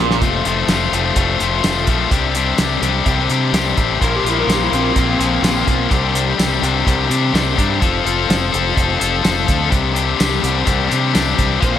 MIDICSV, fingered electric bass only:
0, 0, Header, 1, 2, 480
1, 0, Start_track
1, 0, Tempo, 475059
1, 219, Time_signature, 4, 2, 24, 8
1, 11911, End_track
2, 0, Start_track
2, 0, Title_t, "Fingered electric bass"
2, 0, Program_c, 0, 33
2, 0, Note_on_c, 0, 34, 94
2, 191, Note_off_c, 0, 34, 0
2, 219, Note_on_c, 0, 29, 97
2, 425, Note_off_c, 0, 29, 0
2, 460, Note_on_c, 0, 29, 77
2, 665, Note_off_c, 0, 29, 0
2, 683, Note_on_c, 0, 29, 84
2, 896, Note_off_c, 0, 29, 0
2, 935, Note_on_c, 0, 29, 89
2, 1142, Note_off_c, 0, 29, 0
2, 1171, Note_on_c, 0, 29, 89
2, 1380, Note_off_c, 0, 29, 0
2, 1419, Note_on_c, 0, 29, 79
2, 1624, Note_off_c, 0, 29, 0
2, 1663, Note_on_c, 0, 29, 84
2, 1866, Note_off_c, 0, 29, 0
2, 1894, Note_on_c, 0, 34, 90
2, 2101, Note_off_c, 0, 34, 0
2, 2130, Note_on_c, 0, 36, 87
2, 2545, Note_off_c, 0, 36, 0
2, 2616, Note_on_c, 0, 36, 80
2, 2822, Note_off_c, 0, 36, 0
2, 2847, Note_on_c, 0, 36, 89
2, 3057, Note_off_c, 0, 36, 0
2, 3090, Note_on_c, 0, 36, 100
2, 3299, Note_off_c, 0, 36, 0
2, 3336, Note_on_c, 0, 48, 82
2, 3542, Note_off_c, 0, 48, 0
2, 3565, Note_on_c, 0, 36, 89
2, 3776, Note_off_c, 0, 36, 0
2, 3815, Note_on_c, 0, 33, 79
2, 4022, Note_off_c, 0, 33, 0
2, 4059, Note_on_c, 0, 34, 90
2, 4264, Note_off_c, 0, 34, 0
2, 4277, Note_on_c, 0, 34, 80
2, 4491, Note_off_c, 0, 34, 0
2, 4519, Note_on_c, 0, 34, 83
2, 4733, Note_off_c, 0, 34, 0
2, 4771, Note_on_c, 0, 34, 87
2, 4979, Note_off_c, 0, 34, 0
2, 5009, Note_on_c, 0, 34, 90
2, 5218, Note_off_c, 0, 34, 0
2, 5247, Note_on_c, 0, 34, 82
2, 5457, Note_off_c, 0, 34, 0
2, 5481, Note_on_c, 0, 34, 86
2, 5694, Note_off_c, 0, 34, 0
2, 5735, Note_on_c, 0, 35, 81
2, 5942, Note_off_c, 0, 35, 0
2, 5975, Note_on_c, 0, 36, 92
2, 6389, Note_off_c, 0, 36, 0
2, 6458, Note_on_c, 0, 36, 78
2, 6664, Note_off_c, 0, 36, 0
2, 6690, Note_on_c, 0, 36, 87
2, 6900, Note_off_c, 0, 36, 0
2, 6942, Note_on_c, 0, 36, 93
2, 7146, Note_off_c, 0, 36, 0
2, 7174, Note_on_c, 0, 48, 82
2, 7382, Note_off_c, 0, 48, 0
2, 7410, Note_on_c, 0, 36, 90
2, 7620, Note_off_c, 0, 36, 0
2, 7659, Note_on_c, 0, 43, 80
2, 7865, Note_off_c, 0, 43, 0
2, 7901, Note_on_c, 0, 29, 90
2, 8106, Note_off_c, 0, 29, 0
2, 8135, Note_on_c, 0, 29, 77
2, 8343, Note_off_c, 0, 29, 0
2, 8381, Note_on_c, 0, 29, 82
2, 8586, Note_off_c, 0, 29, 0
2, 8629, Note_on_c, 0, 29, 90
2, 8831, Note_off_c, 0, 29, 0
2, 8861, Note_on_c, 0, 29, 91
2, 9067, Note_off_c, 0, 29, 0
2, 9103, Note_on_c, 0, 29, 83
2, 9308, Note_off_c, 0, 29, 0
2, 9342, Note_on_c, 0, 29, 85
2, 9547, Note_off_c, 0, 29, 0
2, 9584, Note_on_c, 0, 38, 88
2, 9789, Note_off_c, 0, 38, 0
2, 9822, Note_on_c, 0, 36, 96
2, 10234, Note_off_c, 0, 36, 0
2, 10308, Note_on_c, 0, 36, 81
2, 10511, Note_off_c, 0, 36, 0
2, 10542, Note_on_c, 0, 36, 89
2, 10748, Note_off_c, 0, 36, 0
2, 10779, Note_on_c, 0, 36, 88
2, 10986, Note_off_c, 0, 36, 0
2, 11034, Note_on_c, 0, 48, 84
2, 11235, Note_off_c, 0, 48, 0
2, 11268, Note_on_c, 0, 36, 86
2, 11471, Note_off_c, 0, 36, 0
2, 11498, Note_on_c, 0, 36, 83
2, 11706, Note_off_c, 0, 36, 0
2, 11746, Note_on_c, 0, 34, 85
2, 11911, Note_off_c, 0, 34, 0
2, 11911, End_track
0, 0, End_of_file